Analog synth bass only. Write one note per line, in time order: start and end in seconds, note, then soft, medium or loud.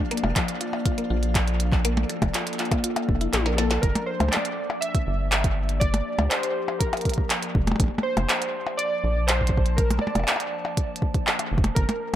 0.24 0.33 F1 medium
1.10 2.05 A#1 medium
2.22 2.32 F1 loud
3.09 3.28 F1 medium
3.33 3.79 A#1 medium
3.83 3.93 G1 loud
4.20 4.30 D2 medium
5.07 6.02 G1 medium
6.19 6.28 D2 loud
7.55 7.74 F1 loud
7.80 7.89 A#1 loud
8.17 8.27 F1 loud
9.04 9.98 A#1 medium
10.15 10.25 F1 loud
11.52 11.71 F1 medium
11.76 11.86 G1 loud